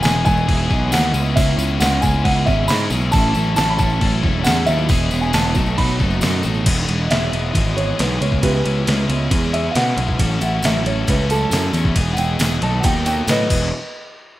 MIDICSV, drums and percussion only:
0, 0, Header, 1, 2, 480
1, 0, Start_track
1, 0, Key_signature, 4, "major"
1, 0, Tempo, 441501
1, 1478, Time_signature, 4, 2, 24, 8
1, 15655, End_track
2, 0, Start_track
2, 0, Title_t, "Drums"
2, 30, Note_on_c, 9, 54, 87
2, 45, Note_on_c, 9, 49, 59
2, 57, Note_on_c, 9, 38, 118
2, 138, Note_off_c, 9, 54, 0
2, 153, Note_off_c, 9, 49, 0
2, 165, Note_off_c, 9, 38, 0
2, 179, Note_on_c, 9, 38, 33
2, 274, Note_on_c, 9, 54, 70
2, 287, Note_on_c, 9, 36, 90
2, 288, Note_off_c, 9, 38, 0
2, 383, Note_off_c, 9, 54, 0
2, 396, Note_off_c, 9, 36, 0
2, 402, Note_on_c, 9, 54, 26
2, 511, Note_off_c, 9, 54, 0
2, 527, Note_on_c, 9, 36, 96
2, 530, Note_on_c, 9, 49, 69
2, 635, Note_off_c, 9, 36, 0
2, 638, Note_off_c, 9, 49, 0
2, 767, Note_on_c, 9, 36, 96
2, 767, Note_on_c, 9, 54, 26
2, 876, Note_off_c, 9, 36, 0
2, 876, Note_off_c, 9, 54, 0
2, 999, Note_on_c, 9, 54, 102
2, 1008, Note_on_c, 9, 49, 69
2, 1019, Note_on_c, 9, 38, 122
2, 1108, Note_off_c, 9, 54, 0
2, 1116, Note_off_c, 9, 49, 0
2, 1122, Note_on_c, 9, 54, 27
2, 1128, Note_off_c, 9, 38, 0
2, 1231, Note_off_c, 9, 54, 0
2, 1238, Note_on_c, 9, 54, 76
2, 1347, Note_off_c, 9, 54, 0
2, 1372, Note_on_c, 9, 54, 30
2, 1480, Note_off_c, 9, 54, 0
2, 1486, Note_on_c, 9, 54, 83
2, 1487, Note_on_c, 9, 36, 127
2, 1489, Note_on_c, 9, 49, 74
2, 1594, Note_off_c, 9, 54, 0
2, 1596, Note_off_c, 9, 36, 0
2, 1598, Note_off_c, 9, 49, 0
2, 1724, Note_on_c, 9, 54, 86
2, 1833, Note_off_c, 9, 54, 0
2, 1861, Note_on_c, 9, 38, 35
2, 1961, Note_on_c, 9, 54, 109
2, 1967, Note_on_c, 9, 49, 69
2, 1970, Note_off_c, 9, 38, 0
2, 1979, Note_on_c, 9, 38, 113
2, 2069, Note_off_c, 9, 54, 0
2, 2076, Note_off_c, 9, 49, 0
2, 2088, Note_off_c, 9, 38, 0
2, 2196, Note_on_c, 9, 54, 84
2, 2208, Note_on_c, 9, 36, 92
2, 2305, Note_off_c, 9, 54, 0
2, 2317, Note_off_c, 9, 36, 0
2, 2448, Note_on_c, 9, 36, 90
2, 2449, Note_on_c, 9, 49, 68
2, 2557, Note_off_c, 9, 36, 0
2, 2557, Note_off_c, 9, 49, 0
2, 2680, Note_on_c, 9, 54, 31
2, 2687, Note_on_c, 9, 36, 93
2, 2789, Note_off_c, 9, 54, 0
2, 2796, Note_off_c, 9, 36, 0
2, 2913, Note_on_c, 9, 54, 103
2, 2929, Note_on_c, 9, 49, 73
2, 2941, Note_on_c, 9, 38, 118
2, 3022, Note_off_c, 9, 54, 0
2, 3037, Note_off_c, 9, 49, 0
2, 3049, Note_off_c, 9, 38, 0
2, 3154, Note_on_c, 9, 54, 78
2, 3263, Note_off_c, 9, 54, 0
2, 3273, Note_on_c, 9, 54, 32
2, 3382, Note_off_c, 9, 54, 0
2, 3389, Note_on_c, 9, 54, 85
2, 3406, Note_on_c, 9, 36, 126
2, 3406, Note_on_c, 9, 49, 70
2, 3498, Note_off_c, 9, 54, 0
2, 3514, Note_off_c, 9, 49, 0
2, 3515, Note_off_c, 9, 36, 0
2, 3636, Note_on_c, 9, 54, 76
2, 3745, Note_off_c, 9, 54, 0
2, 3776, Note_on_c, 9, 38, 34
2, 3872, Note_on_c, 9, 54, 101
2, 3881, Note_on_c, 9, 49, 64
2, 3885, Note_off_c, 9, 38, 0
2, 3893, Note_on_c, 9, 38, 117
2, 3981, Note_off_c, 9, 54, 0
2, 3990, Note_off_c, 9, 49, 0
2, 4002, Note_off_c, 9, 38, 0
2, 4114, Note_on_c, 9, 54, 76
2, 4124, Note_on_c, 9, 36, 93
2, 4223, Note_off_c, 9, 54, 0
2, 4231, Note_on_c, 9, 54, 27
2, 4233, Note_off_c, 9, 36, 0
2, 4340, Note_off_c, 9, 54, 0
2, 4363, Note_on_c, 9, 49, 63
2, 4364, Note_on_c, 9, 36, 90
2, 4471, Note_off_c, 9, 49, 0
2, 4472, Note_off_c, 9, 36, 0
2, 4604, Note_on_c, 9, 36, 93
2, 4713, Note_off_c, 9, 36, 0
2, 4831, Note_on_c, 9, 54, 95
2, 4846, Note_on_c, 9, 49, 64
2, 4858, Note_on_c, 9, 38, 118
2, 4940, Note_off_c, 9, 54, 0
2, 4952, Note_on_c, 9, 54, 29
2, 4955, Note_off_c, 9, 49, 0
2, 4967, Note_off_c, 9, 38, 0
2, 5061, Note_off_c, 9, 54, 0
2, 5071, Note_on_c, 9, 54, 74
2, 5180, Note_off_c, 9, 54, 0
2, 5202, Note_on_c, 9, 54, 30
2, 5311, Note_off_c, 9, 54, 0
2, 5312, Note_on_c, 9, 54, 81
2, 5317, Note_on_c, 9, 49, 74
2, 5322, Note_on_c, 9, 36, 122
2, 5421, Note_off_c, 9, 54, 0
2, 5426, Note_off_c, 9, 49, 0
2, 5431, Note_off_c, 9, 36, 0
2, 5553, Note_on_c, 9, 54, 77
2, 5662, Note_off_c, 9, 54, 0
2, 5693, Note_on_c, 9, 38, 34
2, 5797, Note_on_c, 9, 49, 69
2, 5800, Note_on_c, 9, 54, 99
2, 5802, Note_off_c, 9, 38, 0
2, 5809, Note_on_c, 9, 38, 123
2, 5905, Note_off_c, 9, 49, 0
2, 5908, Note_off_c, 9, 54, 0
2, 5917, Note_off_c, 9, 38, 0
2, 6031, Note_on_c, 9, 54, 77
2, 6043, Note_on_c, 9, 36, 94
2, 6139, Note_off_c, 9, 54, 0
2, 6152, Note_off_c, 9, 36, 0
2, 6154, Note_on_c, 9, 54, 27
2, 6262, Note_off_c, 9, 54, 0
2, 6278, Note_on_c, 9, 54, 26
2, 6283, Note_on_c, 9, 36, 88
2, 6286, Note_on_c, 9, 49, 71
2, 6386, Note_off_c, 9, 54, 0
2, 6392, Note_off_c, 9, 36, 0
2, 6392, Note_on_c, 9, 54, 26
2, 6395, Note_off_c, 9, 49, 0
2, 6501, Note_off_c, 9, 54, 0
2, 6511, Note_on_c, 9, 54, 27
2, 6524, Note_on_c, 9, 36, 91
2, 6620, Note_off_c, 9, 54, 0
2, 6633, Note_off_c, 9, 36, 0
2, 6637, Note_on_c, 9, 54, 30
2, 6746, Note_off_c, 9, 54, 0
2, 6752, Note_on_c, 9, 54, 91
2, 6762, Note_on_c, 9, 49, 68
2, 6774, Note_on_c, 9, 38, 122
2, 6860, Note_off_c, 9, 54, 0
2, 6871, Note_off_c, 9, 49, 0
2, 6874, Note_on_c, 9, 54, 30
2, 6883, Note_off_c, 9, 38, 0
2, 6983, Note_off_c, 9, 54, 0
2, 6990, Note_on_c, 9, 54, 74
2, 7098, Note_off_c, 9, 54, 0
2, 7111, Note_on_c, 9, 54, 28
2, 7220, Note_off_c, 9, 54, 0
2, 7242, Note_on_c, 9, 51, 96
2, 7242, Note_on_c, 9, 57, 115
2, 7244, Note_on_c, 9, 36, 113
2, 7350, Note_off_c, 9, 51, 0
2, 7350, Note_off_c, 9, 57, 0
2, 7352, Note_off_c, 9, 36, 0
2, 7487, Note_on_c, 9, 51, 62
2, 7596, Note_off_c, 9, 51, 0
2, 7726, Note_on_c, 9, 51, 89
2, 7738, Note_on_c, 9, 38, 110
2, 7835, Note_off_c, 9, 51, 0
2, 7847, Note_off_c, 9, 38, 0
2, 7973, Note_on_c, 9, 51, 67
2, 8082, Note_off_c, 9, 51, 0
2, 8207, Note_on_c, 9, 36, 108
2, 8211, Note_on_c, 9, 51, 90
2, 8316, Note_off_c, 9, 36, 0
2, 8319, Note_off_c, 9, 51, 0
2, 8456, Note_on_c, 9, 51, 66
2, 8565, Note_off_c, 9, 51, 0
2, 8689, Note_on_c, 9, 51, 96
2, 8701, Note_on_c, 9, 38, 109
2, 8798, Note_off_c, 9, 51, 0
2, 8810, Note_off_c, 9, 38, 0
2, 8935, Note_on_c, 9, 51, 74
2, 9044, Note_off_c, 9, 51, 0
2, 9046, Note_on_c, 9, 36, 86
2, 9155, Note_off_c, 9, 36, 0
2, 9165, Note_on_c, 9, 36, 101
2, 9165, Note_on_c, 9, 51, 97
2, 9273, Note_off_c, 9, 51, 0
2, 9274, Note_off_c, 9, 36, 0
2, 9410, Note_on_c, 9, 51, 72
2, 9519, Note_off_c, 9, 51, 0
2, 9648, Note_on_c, 9, 51, 93
2, 9660, Note_on_c, 9, 38, 102
2, 9757, Note_off_c, 9, 51, 0
2, 9768, Note_off_c, 9, 38, 0
2, 9889, Note_on_c, 9, 51, 74
2, 9998, Note_off_c, 9, 51, 0
2, 10125, Note_on_c, 9, 36, 111
2, 10125, Note_on_c, 9, 51, 96
2, 10233, Note_off_c, 9, 51, 0
2, 10234, Note_off_c, 9, 36, 0
2, 10371, Note_on_c, 9, 51, 75
2, 10480, Note_off_c, 9, 51, 0
2, 10605, Note_on_c, 9, 51, 97
2, 10617, Note_on_c, 9, 38, 113
2, 10713, Note_off_c, 9, 51, 0
2, 10725, Note_off_c, 9, 38, 0
2, 10846, Note_on_c, 9, 51, 72
2, 10955, Note_off_c, 9, 51, 0
2, 10964, Note_on_c, 9, 36, 82
2, 11073, Note_off_c, 9, 36, 0
2, 11083, Note_on_c, 9, 36, 94
2, 11083, Note_on_c, 9, 51, 99
2, 11192, Note_off_c, 9, 36, 0
2, 11192, Note_off_c, 9, 51, 0
2, 11318, Note_on_c, 9, 54, 71
2, 11326, Note_on_c, 9, 51, 68
2, 11427, Note_off_c, 9, 54, 0
2, 11435, Note_off_c, 9, 51, 0
2, 11552, Note_on_c, 9, 54, 94
2, 11567, Note_on_c, 9, 51, 95
2, 11579, Note_on_c, 9, 38, 114
2, 11660, Note_off_c, 9, 54, 0
2, 11676, Note_off_c, 9, 51, 0
2, 11688, Note_off_c, 9, 38, 0
2, 11808, Note_on_c, 9, 51, 65
2, 11917, Note_off_c, 9, 51, 0
2, 12038, Note_on_c, 9, 54, 66
2, 12045, Note_on_c, 9, 36, 117
2, 12048, Note_on_c, 9, 51, 92
2, 12147, Note_off_c, 9, 54, 0
2, 12154, Note_off_c, 9, 36, 0
2, 12157, Note_off_c, 9, 51, 0
2, 12285, Note_on_c, 9, 51, 74
2, 12287, Note_on_c, 9, 54, 74
2, 12394, Note_off_c, 9, 51, 0
2, 12396, Note_off_c, 9, 54, 0
2, 12517, Note_on_c, 9, 54, 104
2, 12527, Note_on_c, 9, 51, 88
2, 12539, Note_on_c, 9, 38, 113
2, 12626, Note_off_c, 9, 54, 0
2, 12636, Note_off_c, 9, 51, 0
2, 12648, Note_off_c, 9, 38, 0
2, 12755, Note_on_c, 9, 54, 71
2, 12766, Note_on_c, 9, 51, 65
2, 12864, Note_off_c, 9, 54, 0
2, 12875, Note_off_c, 9, 51, 0
2, 12884, Note_on_c, 9, 36, 94
2, 12992, Note_off_c, 9, 36, 0
2, 12999, Note_on_c, 9, 51, 98
2, 12999, Note_on_c, 9, 54, 31
2, 13002, Note_on_c, 9, 36, 103
2, 13108, Note_off_c, 9, 51, 0
2, 13108, Note_off_c, 9, 54, 0
2, 13111, Note_off_c, 9, 36, 0
2, 13228, Note_on_c, 9, 54, 74
2, 13244, Note_on_c, 9, 51, 70
2, 13337, Note_off_c, 9, 54, 0
2, 13353, Note_off_c, 9, 51, 0
2, 13472, Note_on_c, 9, 54, 100
2, 13480, Note_on_c, 9, 51, 97
2, 13492, Note_on_c, 9, 38, 112
2, 13580, Note_off_c, 9, 54, 0
2, 13588, Note_off_c, 9, 51, 0
2, 13600, Note_off_c, 9, 38, 0
2, 13720, Note_on_c, 9, 51, 70
2, 13829, Note_off_c, 9, 51, 0
2, 13950, Note_on_c, 9, 54, 74
2, 13959, Note_on_c, 9, 51, 100
2, 13961, Note_on_c, 9, 36, 114
2, 14059, Note_off_c, 9, 54, 0
2, 14068, Note_off_c, 9, 51, 0
2, 14070, Note_off_c, 9, 36, 0
2, 14196, Note_on_c, 9, 54, 78
2, 14200, Note_on_c, 9, 51, 76
2, 14212, Note_on_c, 9, 38, 34
2, 14305, Note_off_c, 9, 54, 0
2, 14309, Note_off_c, 9, 51, 0
2, 14321, Note_off_c, 9, 38, 0
2, 14432, Note_on_c, 9, 54, 102
2, 14440, Note_on_c, 9, 51, 100
2, 14452, Note_on_c, 9, 38, 120
2, 14541, Note_off_c, 9, 54, 0
2, 14549, Note_off_c, 9, 51, 0
2, 14561, Note_off_c, 9, 38, 0
2, 14680, Note_on_c, 9, 57, 90
2, 14681, Note_on_c, 9, 36, 102
2, 14685, Note_on_c, 9, 54, 79
2, 14789, Note_off_c, 9, 36, 0
2, 14789, Note_off_c, 9, 57, 0
2, 14794, Note_off_c, 9, 54, 0
2, 15655, End_track
0, 0, End_of_file